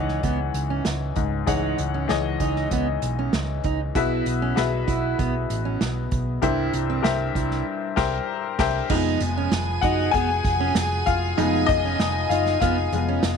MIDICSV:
0, 0, Header, 1, 6, 480
1, 0, Start_track
1, 0, Tempo, 618557
1, 1146, Time_signature, 4, 2, 24, 8
1, 10376, End_track
2, 0, Start_track
2, 0, Title_t, "Violin section"
2, 0, Program_c, 0, 48
2, 6908, Note_on_c, 0, 80, 90
2, 6910, Note_on_c, 0, 68, 88
2, 10376, Note_off_c, 0, 68, 0
2, 10376, Note_off_c, 0, 80, 0
2, 10376, End_track
3, 0, Start_track
3, 0, Title_t, "Upright piano"
3, 0, Program_c, 1, 0
3, 0, Control_c, 1, 64, 127
3, 0, Note_on_c, 1, 44, 63
3, 0, Note_on_c, 1, 52, 83
3, 0, Note_on_c, 1, 68, 67
3, 0, Note_on_c, 1, 73, 70
3, 0, Note_on_c, 1, 75, 86
3, 0, Note_on_c, 1, 78, 81
3, 0, Note_on_c, 1, 80, 68
3, 531, Note_off_c, 1, 52, 0
3, 533, Note_off_c, 1, 68, 0
3, 535, Note_off_c, 1, 73, 0
3, 538, Note_off_c, 1, 78, 0
3, 901, Note_off_c, 1, 44, 0
3, 901, Note_on_c, 1, 44, 64
3, 1136, Note_on_c, 1, 52, 71
3, 1138, Note_on_c, 1, 68, 71
3, 1141, Note_on_c, 1, 73, 65
3, 1148, Note_on_c, 1, 78, 80
3, 1558, Note_off_c, 1, 52, 0
3, 1559, Note_off_c, 1, 68, 0
3, 1560, Note_off_c, 1, 73, 0
3, 1564, Note_off_c, 1, 78, 0
3, 1593, Note_off_c, 1, 44, 0
3, 1612, Note_on_c, 1, 52, 79
3, 1618, Note_on_c, 1, 68, 74
3, 1622, Note_on_c, 1, 73, 72
3, 1631, Note_off_c, 1, 75, 0
3, 1631, Note_on_c, 1, 75, 94
3, 2453, Note_off_c, 1, 52, 0
3, 2456, Note_off_c, 1, 68, 0
3, 2458, Note_off_c, 1, 73, 0
3, 2462, Note_off_c, 1, 75, 0
3, 3066, Note_on_c, 1, 66, 82
3, 3067, Note_on_c, 1, 68, 74
3, 3072, Note_on_c, 1, 47, 68
3, 3075, Note_on_c, 1, 71, 79
3, 3078, Control_c, 1, 64, 0
3, 3080, Note_on_c, 1, 76, 95
3, 3081, Note_off_c, 1, 80, 0
3, 3214, Control_c, 1, 64, 127
3, 3484, Note_off_c, 1, 66, 0
3, 3484, Note_off_c, 1, 68, 0
3, 3488, Note_off_c, 1, 71, 0
3, 3491, Note_off_c, 1, 76, 0
3, 3536, Note_on_c, 1, 66, 85
3, 3542, Note_on_c, 1, 68, 75
3, 3548, Note_on_c, 1, 71, 82
3, 3552, Note_on_c, 1, 76, 89
3, 3760, Note_off_c, 1, 47, 0
3, 4375, Note_off_c, 1, 66, 0
3, 4379, Note_off_c, 1, 68, 0
3, 4382, Note_off_c, 1, 71, 0
3, 4384, Note_off_c, 1, 76, 0
3, 4980, Note_on_c, 1, 67, 78
3, 4982, Note_on_c, 1, 70, 75
3, 4989, Note_on_c, 1, 43, 75
3, 4990, Note_on_c, 1, 72, 75
3, 4994, Note_on_c, 1, 76, 93
3, 4998, Control_c, 1, 64, 0
3, 5133, Control_c, 1, 64, 127
3, 5401, Note_off_c, 1, 67, 0
3, 5402, Note_off_c, 1, 70, 0
3, 5406, Note_off_c, 1, 72, 0
3, 5408, Note_off_c, 1, 76, 0
3, 5447, Note_on_c, 1, 67, 74
3, 5453, Note_on_c, 1, 70, 75
3, 5460, Note_on_c, 1, 72, 71
3, 5464, Note_on_c, 1, 76, 91
3, 5679, Note_off_c, 1, 43, 0
3, 5939, Note_off_c, 1, 67, 0
3, 5942, Note_off_c, 1, 70, 0
3, 5945, Note_off_c, 1, 72, 0
3, 5947, Note_off_c, 1, 76, 0
3, 6179, Note_on_c, 1, 67, 96
3, 6184, Note_on_c, 1, 70, 104
3, 6186, Note_on_c, 1, 72, 95
3, 6193, Note_on_c, 1, 76, 86
3, 6347, Note_off_c, 1, 67, 0
3, 6350, Note_off_c, 1, 70, 0
3, 6351, Note_off_c, 1, 72, 0
3, 6355, Note_off_c, 1, 76, 0
3, 6664, Note_on_c, 1, 67, 100
3, 6669, Note_on_c, 1, 70, 94
3, 6674, Note_on_c, 1, 72, 93
3, 6678, Note_on_c, 1, 76, 95
3, 6830, Note_off_c, 1, 67, 0
3, 6833, Note_off_c, 1, 70, 0
3, 6836, Note_off_c, 1, 72, 0
3, 6838, Note_off_c, 1, 76, 0
3, 6903, Note_on_c, 1, 53, 65
3, 6907, Note_on_c, 1, 56, 57
3, 6910, Note_on_c, 1, 59, 71
3, 6919, Control_c, 1, 64, 0
3, 7046, Control_c, 1, 64, 127
3, 7226, Note_off_c, 1, 53, 0
3, 7228, Note_off_c, 1, 56, 0
3, 7229, Note_off_c, 1, 59, 0
3, 7616, Note_on_c, 1, 78, 94
3, 7633, Note_on_c, 1, 66, 73
3, 7671, Note_off_c, 1, 78, 0
3, 7686, Note_off_c, 1, 66, 0
3, 7849, Note_on_c, 1, 80, 113
3, 7867, Note_on_c, 1, 68, 86
3, 8558, Note_off_c, 1, 68, 0
3, 8584, Note_on_c, 1, 77, 104
3, 8599, Note_on_c, 1, 65, 76
3, 8602, Note_off_c, 1, 80, 0
3, 8825, Note_on_c, 1, 53, 69
3, 8829, Note_on_c, 1, 56, 56
3, 8836, Note_on_c, 1, 59, 68
3, 9036, Note_off_c, 1, 77, 0
3, 9043, Note_off_c, 1, 65, 0
3, 9052, Note_on_c, 1, 75, 122
3, 9066, Note_on_c, 1, 63, 77
3, 9510, Note_off_c, 1, 75, 0
3, 9517, Note_off_c, 1, 63, 0
3, 9540, Note_on_c, 1, 77, 81
3, 9553, Note_on_c, 1, 65, 66
3, 9770, Note_off_c, 1, 77, 0
3, 9775, Note_off_c, 1, 65, 0
3, 9782, Note_on_c, 1, 77, 80
3, 9793, Note_on_c, 1, 65, 72
3, 10019, Note_off_c, 1, 53, 0
3, 10022, Note_off_c, 1, 56, 0
3, 10025, Note_off_c, 1, 59, 0
3, 10030, Note_on_c, 1, 53, 55
3, 10033, Note_on_c, 1, 56, 48
3, 10037, Note_on_c, 1, 59, 56
3, 10235, Note_off_c, 1, 77, 0
3, 10240, Note_off_c, 1, 65, 0
3, 10246, Note_off_c, 1, 53, 0
3, 10248, Note_off_c, 1, 56, 0
3, 10250, Note_off_c, 1, 59, 0
3, 10376, End_track
4, 0, Start_track
4, 0, Title_t, "Steel-string acoustic guitar"
4, 0, Program_c, 2, 25
4, 0, Note_on_c, 2, 63, 72
4, 173, Note_off_c, 2, 63, 0
4, 185, Note_on_c, 2, 59, 80
4, 299, Note_off_c, 2, 59, 0
4, 545, Note_on_c, 2, 61, 69
4, 660, Note_off_c, 2, 61, 0
4, 1145, Note_on_c, 2, 63, 100
4, 1374, Note_off_c, 2, 63, 0
4, 1507, Note_on_c, 2, 61, 69
4, 1621, Note_off_c, 2, 61, 0
4, 1872, Note_on_c, 2, 63, 70
4, 2098, Note_off_c, 2, 63, 0
4, 2114, Note_on_c, 2, 59, 81
4, 2225, Note_off_c, 2, 59, 0
4, 2473, Note_on_c, 2, 61, 73
4, 2585, Note_off_c, 2, 61, 0
4, 2831, Note_on_c, 2, 63, 82
4, 2944, Note_off_c, 2, 63, 0
4, 3072, Note_on_c, 2, 64, 101
4, 3298, Note_off_c, 2, 64, 0
4, 3431, Note_on_c, 2, 61, 74
4, 3544, Note_off_c, 2, 61, 0
4, 3783, Note_on_c, 2, 64, 73
4, 4014, Note_off_c, 2, 64, 0
4, 4027, Note_on_c, 2, 59, 92
4, 4142, Note_off_c, 2, 59, 0
4, 4386, Note_on_c, 2, 61, 74
4, 4501, Note_off_c, 2, 61, 0
4, 4989, Note_on_c, 2, 64, 121
4, 5217, Note_off_c, 2, 64, 0
4, 5352, Note_on_c, 2, 60, 78
4, 5465, Note_off_c, 2, 60, 0
4, 5710, Note_on_c, 2, 64, 72
4, 5938, Note_off_c, 2, 64, 0
4, 6908, Note_on_c, 2, 63, 114
4, 7137, Note_off_c, 2, 63, 0
4, 7275, Note_on_c, 2, 61, 92
4, 7387, Note_off_c, 2, 61, 0
4, 7637, Note_on_c, 2, 63, 88
4, 7862, Note_off_c, 2, 63, 0
4, 7876, Note_on_c, 2, 59, 95
4, 7987, Note_off_c, 2, 59, 0
4, 8229, Note_on_c, 2, 61, 96
4, 8344, Note_off_c, 2, 61, 0
4, 8828, Note_on_c, 2, 63, 127
4, 9057, Note_off_c, 2, 63, 0
4, 9194, Note_on_c, 2, 61, 85
4, 9307, Note_off_c, 2, 61, 0
4, 9556, Note_on_c, 2, 63, 78
4, 9781, Note_off_c, 2, 63, 0
4, 9793, Note_on_c, 2, 59, 89
4, 9906, Note_off_c, 2, 59, 0
4, 10154, Note_on_c, 2, 61, 89
4, 10266, Note_off_c, 2, 61, 0
4, 10376, End_track
5, 0, Start_track
5, 0, Title_t, "Picked electric bass"
5, 0, Program_c, 3, 34
5, 0, Note_on_c, 3, 37, 86
5, 140, Note_off_c, 3, 37, 0
5, 183, Note_on_c, 3, 37, 84
5, 381, Note_off_c, 3, 37, 0
5, 419, Note_on_c, 3, 37, 77
5, 619, Note_off_c, 3, 37, 0
5, 662, Note_on_c, 3, 37, 91
5, 861, Note_off_c, 3, 37, 0
5, 903, Note_on_c, 3, 37, 78
5, 1101, Note_off_c, 3, 37, 0
5, 1145, Note_on_c, 3, 37, 70
5, 1342, Note_off_c, 3, 37, 0
5, 1390, Note_on_c, 3, 37, 105
5, 1586, Note_off_c, 3, 37, 0
5, 1630, Note_on_c, 3, 37, 98
5, 1826, Note_off_c, 3, 37, 0
5, 1863, Note_on_c, 3, 37, 84
5, 2062, Note_off_c, 3, 37, 0
5, 2105, Note_on_c, 3, 37, 90
5, 2303, Note_off_c, 3, 37, 0
5, 2347, Note_on_c, 3, 35, 90
5, 2544, Note_off_c, 3, 35, 0
5, 2585, Note_on_c, 3, 37, 89
5, 2783, Note_off_c, 3, 37, 0
5, 2829, Note_on_c, 3, 37, 78
5, 3026, Note_off_c, 3, 37, 0
5, 3068, Note_on_c, 3, 35, 91
5, 3265, Note_off_c, 3, 35, 0
5, 3306, Note_on_c, 3, 35, 101
5, 3504, Note_off_c, 3, 35, 0
5, 3550, Note_on_c, 3, 35, 92
5, 3746, Note_off_c, 3, 35, 0
5, 3786, Note_on_c, 3, 35, 84
5, 3984, Note_off_c, 3, 35, 0
5, 4028, Note_on_c, 3, 35, 90
5, 4226, Note_off_c, 3, 35, 0
5, 4267, Note_on_c, 3, 33, 87
5, 4465, Note_off_c, 3, 33, 0
5, 4508, Note_on_c, 3, 35, 95
5, 4705, Note_off_c, 3, 35, 0
5, 4749, Note_on_c, 3, 35, 87
5, 4946, Note_off_c, 3, 35, 0
5, 4986, Note_on_c, 3, 36, 89
5, 5184, Note_off_c, 3, 36, 0
5, 5228, Note_on_c, 3, 36, 95
5, 5425, Note_off_c, 3, 36, 0
5, 5464, Note_on_c, 3, 36, 95
5, 5663, Note_off_c, 3, 36, 0
5, 5706, Note_on_c, 3, 36, 93
5, 5904, Note_off_c, 3, 36, 0
5, 6187, Note_on_c, 3, 36, 85
5, 6352, Note_off_c, 3, 36, 0
5, 6667, Note_on_c, 3, 36, 95
5, 6832, Note_off_c, 3, 36, 0
5, 6906, Note_on_c, 3, 29, 83
5, 7105, Note_off_c, 3, 29, 0
5, 7147, Note_on_c, 3, 29, 124
5, 7345, Note_off_c, 3, 29, 0
5, 7385, Note_on_c, 3, 29, 119
5, 7584, Note_off_c, 3, 29, 0
5, 7623, Note_on_c, 3, 30, 85
5, 7823, Note_off_c, 3, 30, 0
5, 7865, Note_on_c, 3, 29, 112
5, 8064, Note_off_c, 3, 29, 0
5, 8104, Note_on_c, 3, 29, 100
5, 8304, Note_off_c, 3, 29, 0
5, 8344, Note_on_c, 3, 29, 102
5, 8544, Note_off_c, 3, 29, 0
5, 8588, Note_on_c, 3, 29, 96
5, 8786, Note_off_c, 3, 29, 0
5, 8831, Note_on_c, 3, 29, 88
5, 9028, Note_off_c, 3, 29, 0
5, 9070, Note_on_c, 3, 29, 123
5, 9267, Note_off_c, 3, 29, 0
5, 9305, Note_on_c, 3, 29, 108
5, 9504, Note_off_c, 3, 29, 0
5, 9545, Note_on_c, 3, 30, 85
5, 9744, Note_off_c, 3, 30, 0
5, 9788, Note_on_c, 3, 29, 118
5, 9986, Note_off_c, 3, 29, 0
5, 10027, Note_on_c, 3, 29, 95
5, 10225, Note_off_c, 3, 29, 0
5, 10266, Note_on_c, 3, 29, 93
5, 10376, Note_off_c, 3, 29, 0
5, 10376, End_track
6, 0, Start_track
6, 0, Title_t, "Drums"
6, 64, Note_on_c, 9, 38, 33
6, 142, Note_off_c, 9, 38, 0
6, 180, Note_on_c, 9, 42, 79
6, 182, Note_on_c, 9, 36, 79
6, 258, Note_off_c, 9, 42, 0
6, 260, Note_off_c, 9, 36, 0
6, 420, Note_on_c, 9, 42, 76
6, 498, Note_off_c, 9, 42, 0
6, 659, Note_on_c, 9, 38, 99
6, 662, Note_on_c, 9, 42, 81
6, 737, Note_off_c, 9, 38, 0
6, 739, Note_off_c, 9, 42, 0
6, 897, Note_on_c, 9, 42, 60
6, 904, Note_on_c, 9, 36, 91
6, 974, Note_off_c, 9, 42, 0
6, 982, Note_off_c, 9, 36, 0
6, 1142, Note_on_c, 9, 42, 78
6, 1144, Note_on_c, 9, 36, 88
6, 1219, Note_off_c, 9, 42, 0
6, 1222, Note_off_c, 9, 36, 0
6, 1383, Note_on_c, 9, 42, 69
6, 1461, Note_off_c, 9, 42, 0
6, 1623, Note_on_c, 9, 38, 95
6, 1623, Note_on_c, 9, 42, 68
6, 1700, Note_off_c, 9, 38, 0
6, 1701, Note_off_c, 9, 42, 0
6, 1862, Note_on_c, 9, 42, 76
6, 1863, Note_on_c, 9, 36, 76
6, 1940, Note_off_c, 9, 42, 0
6, 1941, Note_off_c, 9, 36, 0
6, 1986, Note_on_c, 9, 38, 34
6, 2063, Note_off_c, 9, 38, 0
6, 2103, Note_on_c, 9, 42, 75
6, 2105, Note_on_c, 9, 36, 74
6, 2180, Note_off_c, 9, 42, 0
6, 2183, Note_off_c, 9, 36, 0
6, 2343, Note_on_c, 9, 42, 78
6, 2421, Note_off_c, 9, 42, 0
6, 2583, Note_on_c, 9, 38, 93
6, 2586, Note_on_c, 9, 42, 86
6, 2661, Note_off_c, 9, 38, 0
6, 2663, Note_off_c, 9, 42, 0
6, 2821, Note_on_c, 9, 42, 62
6, 2828, Note_on_c, 9, 36, 88
6, 2899, Note_off_c, 9, 42, 0
6, 2905, Note_off_c, 9, 36, 0
6, 3066, Note_on_c, 9, 42, 88
6, 3067, Note_on_c, 9, 36, 93
6, 3144, Note_off_c, 9, 42, 0
6, 3145, Note_off_c, 9, 36, 0
6, 3305, Note_on_c, 9, 42, 79
6, 3382, Note_off_c, 9, 42, 0
6, 3546, Note_on_c, 9, 38, 99
6, 3547, Note_on_c, 9, 42, 78
6, 3624, Note_off_c, 9, 38, 0
6, 3624, Note_off_c, 9, 42, 0
6, 3786, Note_on_c, 9, 36, 86
6, 3786, Note_on_c, 9, 42, 68
6, 3864, Note_off_c, 9, 36, 0
6, 3864, Note_off_c, 9, 42, 0
6, 4028, Note_on_c, 9, 42, 75
6, 4029, Note_on_c, 9, 36, 90
6, 4106, Note_off_c, 9, 36, 0
6, 4106, Note_off_c, 9, 42, 0
6, 4268, Note_on_c, 9, 42, 79
6, 4346, Note_off_c, 9, 42, 0
6, 4507, Note_on_c, 9, 38, 103
6, 4510, Note_on_c, 9, 42, 82
6, 4585, Note_off_c, 9, 38, 0
6, 4588, Note_off_c, 9, 42, 0
6, 4744, Note_on_c, 9, 42, 70
6, 4749, Note_on_c, 9, 36, 94
6, 4822, Note_off_c, 9, 42, 0
6, 4826, Note_off_c, 9, 36, 0
6, 4984, Note_on_c, 9, 42, 82
6, 4987, Note_on_c, 9, 36, 89
6, 5061, Note_off_c, 9, 42, 0
6, 5065, Note_off_c, 9, 36, 0
6, 5225, Note_on_c, 9, 42, 81
6, 5302, Note_off_c, 9, 42, 0
6, 5467, Note_on_c, 9, 38, 108
6, 5467, Note_on_c, 9, 42, 76
6, 5544, Note_off_c, 9, 38, 0
6, 5544, Note_off_c, 9, 42, 0
6, 5706, Note_on_c, 9, 36, 78
6, 5710, Note_on_c, 9, 42, 74
6, 5784, Note_off_c, 9, 36, 0
6, 5787, Note_off_c, 9, 42, 0
6, 5826, Note_on_c, 9, 38, 34
6, 5904, Note_off_c, 9, 38, 0
6, 6186, Note_on_c, 9, 38, 103
6, 6186, Note_on_c, 9, 49, 90
6, 6188, Note_on_c, 9, 36, 121
6, 6264, Note_off_c, 9, 38, 0
6, 6264, Note_off_c, 9, 49, 0
6, 6265, Note_off_c, 9, 36, 0
6, 6665, Note_on_c, 9, 38, 115
6, 6665, Note_on_c, 9, 49, 87
6, 6667, Note_on_c, 9, 36, 114
6, 6743, Note_off_c, 9, 38, 0
6, 6743, Note_off_c, 9, 49, 0
6, 6744, Note_off_c, 9, 36, 0
6, 6903, Note_on_c, 9, 49, 115
6, 6906, Note_on_c, 9, 36, 105
6, 6981, Note_off_c, 9, 49, 0
6, 6984, Note_off_c, 9, 36, 0
6, 7142, Note_on_c, 9, 42, 84
6, 7220, Note_off_c, 9, 42, 0
6, 7384, Note_on_c, 9, 38, 121
6, 7385, Note_on_c, 9, 42, 82
6, 7462, Note_off_c, 9, 38, 0
6, 7462, Note_off_c, 9, 42, 0
6, 7625, Note_on_c, 9, 36, 97
6, 7625, Note_on_c, 9, 42, 82
6, 7703, Note_off_c, 9, 36, 0
6, 7703, Note_off_c, 9, 42, 0
6, 7867, Note_on_c, 9, 42, 83
6, 7868, Note_on_c, 9, 36, 92
6, 7944, Note_off_c, 9, 42, 0
6, 7945, Note_off_c, 9, 36, 0
6, 8106, Note_on_c, 9, 36, 110
6, 8107, Note_on_c, 9, 42, 89
6, 8184, Note_off_c, 9, 36, 0
6, 8185, Note_off_c, 9, 42, 0
6, 8343, Note_on_c, 9, 38, 103
6, 8345, Note_on_c, 9, 42, 100
6, 8420, Note_off_c, 9, 38, 0
6, 8423, Note_off_c, 9, 42, 0
6, 8585, Note_on_c, 9, 42, 74
6, 8590, Note_on_c, 9, 36, 98
6, 8663, Note_off_c, 9, 42, 0
6, 8667, Note_off_c, 9, 36, 0
6, 8831, Note_on_c, 9, 42, 99
6, 8909, Note_off_c, 9, 42, 0
6, 9069, Note_on_c, 9, 42, 82
6, 9070, Note_on_c, 9, 36, 112
6, 9146, Note_off_c, 9, 42, 0
6, 9148, Note_off_c, 9, 36, 0
6, 9309, Note_on_c, 9, 38, 110
6, 9310, Note_on_c, 9, 42, 76
6, 9387, Note_off_c, 9, 38, 0
6, 9387, Note_off_c, 9, 42, 0
6, 9550, Note_on_c, 9, 42, 90
6, 9628, Note_off_c, 9, 42, 0
6, 9668, Note_on_c, 9, 38, 42
6, 9746, Note_off_c, 9, 38, 0
6, 9788, Note_on_c, 9, 42, 86
6, 9790, Note_on_c, 9, 36, 91
6, 9866, Note_off_c, 9, 42, 0
6, 9867, Note_off_c, 9, 36, 0
6, 10028, Note_on_c, 9, 42, 91
6, 10106, Note_off_c, 9, 42, 0
6, 10265, Note_on_c, 9, 38, 120
6, 10267, Note_on_c, 9, 42, 107
6, 10342, Note_off_c, 9, 38, 0
6, 10345, Note_off_c, 9, 42, 0
6, 10376, End_track
0, 0, End_of_file